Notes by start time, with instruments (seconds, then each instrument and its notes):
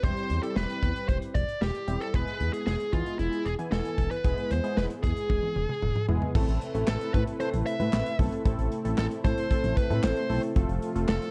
0.03 analog synth bass E1, synth keys G3 C4 E4 G4, lead electric guitar C5, kick, closed hi-hat
0.17 closed hi-hat
0.30 analog synth bass E2, closed hi-hat
0.43 synth keys G3 C4 E4 G4, lead electric guitar A4, closed hi-hat
0.56 analog synth bass E1, lead electric guitar B4, snare
0.69 closed hi-hat
0.83 analog synth bass E2, kick, closed hi-hat
0.96 closed hi-hat
1.09 analog synth bass E1, lead electric guitar C5, kick, closed hi-hat
1.22 closed hi-hat
1.35 analog synth bass E1, lead electric guitar D5, kick, closed hi-hat
1.49 closed hi-hat
1.61 analog synth bass E1, lead electric guitar G4, snare
1.75 closed hi-hat
1.88 analog synth bass E1, synth keys G3 C4 E4 G4, closed hi-hat
2.00 lead electric guitar A4, closed hi-hat
2.14 analog synth bass E1, synth keys G#3 B3 E4 G#4, lead electric guitar B4, kick, closed hi-hat
2.27 closed hi-hat
2.40 analog synth bass E2, closed hi-hat
2.53 lead electric guitar G#4, closed hi-hat
2.67 analog synth bass E1, lead electric guitar G#4, snare
2.80 closed hi-hat
2.93 analog synth bass E2, synth keys G#3 B3 E4 G#4, lead electric guitar F4, kick, closed hi-hat
3.06 closed hi-hat
3.19 analog synth bass E1, lead electric guitar E4, closed hi-hat
3.33 closed hi-hat
3.45 analog synth bass E1, lead electric guitar G#4, closed hi-hat
3.59 synth keys E3 B3 E4 G#5, closed hi-hat
3.72 analog synth bass E1, lead electric guitar A4, snare
3.85 closed hi-hat
3.98 analog synth bass E1, kick, closed hi-hat
4.11 lead electric guitar B4, closed hi-hat
4.24 analog synth bass E1, synth keys G#3 B3 E4 G#4, kick, closed hi-hat
4.38 closed hi-hat
4.51 analog synth bass E2, lead electric guitar C5, closed hi-hat
4.64 synth keys G#3 B3 E4 G#4, closed hi-hat
4.77 analog synth bass E1, lead electric guitar B4, snare
4.90 closed hi-hat
5.03 analog synth bass E2, lead electric guitar G#4, kick, closed hi-hat
5.17 closed hi-hat
5.30 analog synth bass E1, kick, high tom
5.43 high tom
5.56 analog synth bass E1, mid tom
5.69 mid tom
5.82 analog synth bass E1, mid tom
5.96 mid tom
6.08 analog synth bass E1, synth keys G#3 B3 E4 G#4, floor tom
6.22 floor tom
6.35 analog synth bass A1, analog synth pad C3 A3 E4 B4, synth keys A3 C4 E4 A4, kick, crash
6.48 analog synth bass A1, closed hi-hat
6.61 closed hi-hat
6.74 analog synth bass A1, synth keys A3 C4 E4 A4, closed hi-hat
6.88 analog synth bass A1, lead electric guitar A4, snare, clap
7.01 closed hi-hat
7.14 analog synth bass A2, synth keys A3 C4 E4 A4, lead electric guitar B4, kick, closed hi-hat
7.27 closed hi-hat
7.40 synth keys A3 C4 E4 A4, lead electric guitar C5, closed hi-hat
7.53 analog synth bass A1, closed hi-hat
7.66 lead electric guitar E5, closed hi-hat
7.80 analog synth bass A2, synth keys A3 C4 E4 B4, closed hi-hat
7.93 analog synth bass A1, snare, clap
8.06 closed hi-hat
8.19 analog synth bass B1, synth keys A3 C4 E4 A4, kick, open hi-hat
8.32 closed hi-hat
8.45 analog synth bass A1, synth keys A3 C4 E4 A4, analog synth pad C4, kick, closed hi-hat
8.59 analog synth bass A1, closed hi-hat
8.72 closed hi-hat
8.85 analog synth bass A1, synth keys A3 C4 E4 A4, closed hi-hat
8.98 analog synth bass A1, lead electric guitar A4, snare, clap
9.11 closed hi-hat
9.24 analog synth bass A2, synth keys A3 C4 E4 A4, lead electric guitar C5, kick, closed hi-hat
9.38 closed hi-hat
9.50 synth keys A3 C4 E4 A4, kick, closed hi-hat
9.64 analog synth bass A1, closed hi-hat
9.77 lead electric guitar B4, kick, closed hi-hat
9.90 analog synth bass A2, synth keys A3 C4 E4 A4, closed hi-hat
10.03 analog synth bass A1, lead electric guitar C5, snare, clap
10.17 closed hi-hat
10.30 analog synth bass B1, synth keys A3 C4 E4 A4, open hi-hat
10.43 closed hi-hat
10.56 analog synth bass F1, analog synth pad F3 F4, synth keys A3 C4 F4 A4, kick, closed hi-hat
10.69 analog synth bass F1, closed hi-hat
10.82 closed hi-hat
10.96 analog synth bass F1, synth keys A3 C4 F4 A4, closed hi-hat
11.09 analog synth bass F1, lead electric guitar A4, snare, clap
11.22 closed hi-hat